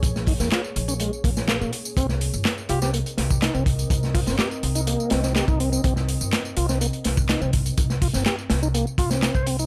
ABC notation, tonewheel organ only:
X:1
M:4/4
L:1/16
Q:1/4=124
K:Cphr
V:1 name="Tonewheel organ"
z2 E B, F z2 D A, z B, z B, B, z2 | C z4 z F C B, z3 E C z2 | z2 F C G z2 E B,2 C C G E C C | C z4 z F C B, z3 E C z2 |
z2 F C G z2 E B, z F C C c C E |]